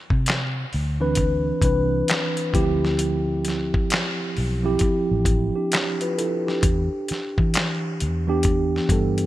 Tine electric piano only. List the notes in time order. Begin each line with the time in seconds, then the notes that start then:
1.00 E3 C4 D4 B4
1.63 E3 C4 D4 B4
2.53 F3 C4 E4 G4
4.64 F3 C4 E4 G4
5.56 D4 G4
6.02 F4 B4
6.18 E4 A4
6.47 D4 G4
8.27 E3 B3 D4 G4
8.90 E3 B3 D4 A4